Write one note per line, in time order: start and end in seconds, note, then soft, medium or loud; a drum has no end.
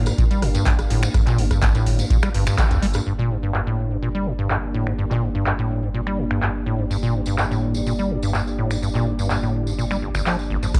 0.00 3.02 A#3 medium
0.00 3.02 D4 medium
0.00 3.02 G4 medium
0.00 3.05 F5 medium
0.06 0.13 G2 medium
0.06 cross-stick medium
0.06 closed hi-hat soft
0.06 tambourine medium
0.18 0.25 A#2 medium
0.18 kick loud
0.18 closed hi-hat medium
0.18 tambourine medium
0.31 0.44 G3 medium
0.31 closed hi-hat soft
0.31 tambourine soft
0.42 0.57 G1 loud
0.42 0.49 G2 medium
0.42 cross-stick medium
0.42 open hi-hat loud
0.55 0.64 G2 medium
0.55 closed hi-hat soft
0.55 tambourine medium
0.66 0.73 G2 medium
0.66 kick loud
0.66 clap loud
0.66 closed hi-hat medium
0.66 tambourine medium
0.79 0.86 G1 medium
0.79 cross-stick medium
0.79 closed hi-hat soft
0.79 tambourine soft
0.90 1.05 G1 loud
0.90 1.04 A2 medium
0.90 open hi-hat medium
1.03 1.09 G2 medium
1.03 finger snap medium
1.03 closed hi-hat soft
1.03 tambourine medium
1.14 1.21 G2 medium
1.14 kick loud
1.14 cross-stick medium
1.14 closed hi-hat medium
1.14 tambourine medium
1.27 1.40 A#2 loud
1.27 clap soft
1.27 closed hi-hat soft
1.27 tambourine soft
1.38 1.53 G1 loud
1.38 1.45 G2 medium
1.38 open hi-hat loud
1.51 1.60 G2 medium
1.51 kick medium
1.51 cross-stick medium
1.51 closed hi-hat soft
1.51 tambourine medium
1.62 1.77 G1 medium
1.62 1.69 G2 medium
1.62 kick loud
1.62 clap loud
1.62 closed hi-hat medium
1.62 tambourine medium
1.75 2.00 A2 medium
1.75 closed hi-hat soft
1.75 tambourine soft
1.86 2.01 G1 loud
1.86 open hi-hat medium
1.99 2.05 G2 medium
1.99 closed hi-hat soft
1.99 tambourine medium
2.10 2.17 A#2 medium
2.10 kick loud
2.10 closed hi-hat medium
2.10 tambourine medium
2.22 2.29 G3 medium
2.22 finger snap medium
2.22 cross-stick medium
2.22 closed hi-hat soft
2.22 tambourine soft
2.34 2.49 G1 medium
2.34 2.45 G2 medium
2.34 open hi-hat loud
2.47 2.56 G2 medium
2.47 finger snap medium
2.47 tambourine medium
2.58 2.65 D3 medium
2.58 kick loud
2.58 cross-stick medium
2.58 clap loud
2.58 closed hi-hat medium
2.58 tambourine medium
2.71 2.78 D2 medium
2.71 2.77 F2 medium
2.71 closed hi-hat soft
2.71 tambourine soft
2.82 2.97 G1 loud
2.82 2.86 G3 loud
2.82 open hi-hat medium
2.93 3.01 G2 medium
2.93 cross-stick medium
2.93 closed hi-hat soft
2.93 tambourine medium
3.06 10.72 G1 medium
3.06 3.13 G2 medium
3.06 10.70 A#3 medium
3.06 10.70 D4 medium
3.06 10.70 G4 medium
3.06 10.70 D5 medium
3.19 3.32 A#2 loud
3.30 3.37 G2 medium
3.43 3.52 G2 medium
3.54 3.61 G2 medium
3.54 clap loud
3.67 3.92 A2 medium
3.91 3.97 G2 medium
4.02 4.09 A#2 medium
4.15 4.28 G3 medium
4.26 4.33 G2 medium
4.39 4.48 G2 medium
4.50 4.57 G2 medium
4.50 clap loud
4.74 4.88 A2 medium
4.87 4.93 G2 medium
4.87 finger snap medium
4.98 5.05 G2 medium
5.11 5.24 A#2 loud
5.11 clap soft
5.22 5.29 G2 medium
5.35 5.44 G2 medium
5.46 5.53 G2 medium
5.46 clap loud
5.59 5.84 A2 medium
5.83 5.89 G2 medium
5.94 6.01 A#2 medium
6.07 6.20 G3 medium
6.07 finger snap medium
6.18 6.25 G2 medium
6.31 6.40 G2 medium
6.31 finger snap medium
6.42 6.49 G2 medium
6.42 clap loud
6.66 6.80 A2 medium
6.79 6.85 G2 medium
6.90 6.97 G2 medium
6.90 tambourine medium
7.03 7.16 A#2 loud
7.03 tambourine soft
7.14 7.21 G2 medium
7.26 7.36 G2 medium
7.26 tambourine medium
7.38 7.45 G2 medium
7.38 clap loud
7.38 tambourine medium
7.51 7.76 A2 medium
7.51 tambourine soft
7.74 7.81 G2 medium
7.74 tambourine medium
7.86 7.93 A#2 medium
7.86 tambourine medium
7.98 8.12 G3 medium
7.98 tambourine soft
8.11 8.17 G2 medium
8.23 8.32 G2 medium
8.23 tambourine medium
8.34 8.41 G2 medium
8.34 clap loud
8.34 tambourine medium
8.47 tambourine soft
8.58 8.72 A2 medium
8.71 8.77 G2 medium
8.71 finger snap medium
8.71 tambourine medium
8.82 8.89 G2 medium
8.82 tambourine medium
8.95 9.08 A#2 loud
8.95 clap soft
8.95 tambourine soft
9.06 9.13 G2 medium
9.19 9.28 G2 medium
9.19 tambourine medium
9.30 9.37 G2 medium
9.30 clap loud
9.30 tambourine medium
9.42 9.68 A2 medium
9.42 tambourine soft
9.67 9.73 G2 medium
9.67 tambourine medium
9.78 9.85 A#2 medium
9.78 tambourine medium
9.91 9.97 G3 medium
9.91 finger snap medium
9.91 tambourine soft
10.02 10.09 G1 medium
10.15 10.21 G1 loud
10.15 finger snap medium
10.15 tambourine medium
10.26 10.37 F3 medium
10.26 clap loud
10.26 tambourine medium
10.39 tambourine soft
10.50 10.57 G1 loud
10.63 10.67 G2 medium
10.63 tambourine medium
10.74 10.78 G2 medium
10.74 10.80 A#3 medium
10.74 10.80 D4 medium
10.74 10.80 G4 medium
10.74 10.80 D5 medium
10.74 kick loud
10.74 cross-stick medium
10.74 closed hi-hat medium
10.74 crash loud
10.74 tambourine medium